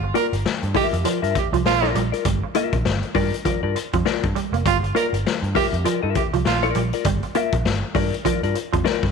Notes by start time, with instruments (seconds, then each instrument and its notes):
Already playing: picked electric bass G1
0.04 muted clean electric guitar stroke
0.14 clean electric guitar A#3 F4 A#4 D5, tenor saxophone A#4, closed hi-hat
0.33 picked electric bass G1, closed hi-hat
0.45 muted picked electric bass stroke, snare
0.63 picked electric bass G2, closed hi-hat
0.74 clean electric guitar G3 F4 A#4 E5, tenor saxophone G4, kick, open hi-hat
0.93 picked electric bass F2, closed hi-hat
1.04 clean electric guitar F3 F4 A#4 D5, muted picked electric bass stroke, closed hi-hat
1.22 picked electric bass G2, clean electric guitar F4 A#4 E5, closed hi-hat
1.35 tenor saxophone G4, muted clean electric guitar stroke, kick, closed hi-hat
1.53 picked electric bass C2, clean electric guitar F3, closed hi-hat
1.65 picked electric bass A#1, tenor saxophone F4, snare
1.82 clean electric guitar F4 A#4 D5, snare
1.95 picked electric bass A#1, clean electric guitar G3, closed hi-hat
2.12 clean electric guitar F4 A#4 D5, closed hi-hat
2.25 picked electric bass G1, clean electric guitar G3, kick, closed hi-hat
2.43 muted clean electric guitar stroke
2.55 clean electric guitar A#3 F4 A#4 E5, closed hi-hat
2.73 picked electric bass A#1, kick, closed hi-hat
2.85 picked electric bass G1, snare
3.03 closed hi-hat
3.15 picked electric bass G2, clean electric guitar G3 F4 A#4 D5, kick, open hi-hat
3.34 closed hi-hat
3.45 clean electric guitar F3 F4 A#4 D5, muted picked electric bass stroke, kick, closed hi-hat
3.63 picked electric bass G2, clean electric guitar F4 A#4 D5
3.76 muted clean electric guitar stroke, closed hi-hat
3.93 picked electric bass F2, clean electric guitar F3, kick, closed hi-hat
4.05 clean electric guitar F4 A#4 D5, muted clean electric guitar stroke, snare
4.23 picked electric bass G2, kick, closed hi-hat
4.35 clean electric guitar G3, closed hi-hat
4.52 picked electric bass F1, clean electric guitar A#3, closed hi-hat
4.66 picked electric bass G1, clean electric guitar G3, tenor saxophone F4, kick, closed hi-hat
4.83 muted clean electric guitar stroke, closed hi-hat
4.95 clean electric guitar A#3 F4 A#4 D5, tenor saxophone A#4, closed hi-hat
5.13 picked electric bass G1, closed hi-hat
5.25 muted picked electric bass stroke, snare
5.42 picked electric bass G2, closed hi-hat
5.55 clean electric guitar G3 F4 A#4 E5, tenor saxophone G4, kick, open hi-hat
5.73 picked electric bass F2, closed hi-hat
5.84 clean electric guitar F3 F4 A#4 D5, muted picked electric bass stroke, closed hi-hat
6.02 picked electric bass G2, clean electric guitar F4 A#4 E5
6.15 tenor saxophone G4, muted clean electric guitar stroke, kick, closed hi-hat
6.33 picked electric bass C2, clean electric guitar F3, closed hi-hat
6.45 picked electric bass A#1, tenor saxophone F4, snare
6.63 clean electric guitar F4 A#4 D5, closed hi-hat
6.75 picked electric bass A#1, clean electric guitar G3, closed hi-hat
6.93 clean electric guitar F4 A#4 D5, closed hi-hat
7.05 picked electric bass G1, clean electric guitar G3, kick, closed hi-hat
7.23 muted clean electric guitar stroke, closed hi-hat
7.35 clean electric guitar A#3 F4 A#4 E5, closed hi-hat
7.53 picked electric bass A#1, kick, closed hi-hat
7.65 picked electric bass G1, snare
7.95 picked electric bass G2, clean electric guitar G3 F4 A#4 D5, kick, open hi-hat
8.14 closed hi-hat
8.25 clean electric guitar F3 F4 A#4 D5, muted picked electric bass stroke, kick, closed hi-hat
8.43 picked electric bass G2, clean electric guitar F4 A#4 D5, closed hi-hat
8.55 muted clean electric guitar stroke, closed hi-hat
8.73 picked electric bass F2, clean electric guitar F3, kick, closed hi-hat
8.84 clean electric guitar F4 A#4 D5, muted clean electric guitar stroke, snare
9.03 picked electric bass G2, kick, snare